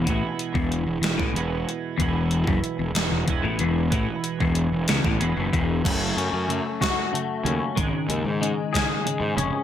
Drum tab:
CC |------------|------------|------------|x-----------|
HH |x-x-x-x-x-x-|x-x-x-x-x-x-|x-x-x-x-x-x-|x-x-x-x-x-x-|
SD |------o-----|------o-----|------o-----|------o-----|
BD |o--o---o----|o--o----o---|o--o---o--o-|o-----o-----|

CC |------------|
HH |x-x-x-x-x-x-|
SD |------o-----|
BD |o-----o-----|